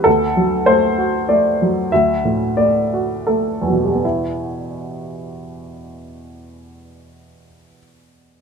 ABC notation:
X:1
M:3/4
L:1/8
Q:1/4=82
K:Em
V:1 name="Upright piano"
A2 c2 d2 | e2 d2 A2 | [E,,B,,G,B,E]6- | [E,,B,,G,B,E]6 |]
V:2 name="Upright piano" clef=bass
D,, F, A, F A, F, | D,, A,, A, F A, F, | z6 | z6 |]